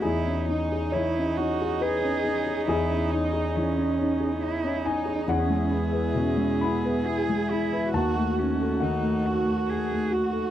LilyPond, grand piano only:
\new Staff \with { instrumentName = "Grand piano" } { \time 3/4 \key cis \minor \tempo 4 = 69 << { gis'4 cis''4 b'4 | gis'2~ gis'8 gis''8 | fis''4. b''4. | a''4 fis''4 r4 | } \\ { e,16 cis'16 dis'16 gis'16 e16 cis'16 dis'16 gis'8 cis'16 dis'16 gis'16 | e,16 cis'16 dis'16 gis'16 e16 cis'16 dis'16 gis'8 cis'16 dis'16 gis'16 | e,16 gis16 e'16 b'16 b,16 gis16 e'16 b'8 gis16 e'16 b'16 | dis,16 a16 fis'16 a'16 dis16 a16 fis'16 a8 a16 fis'16 a'16 | } >> }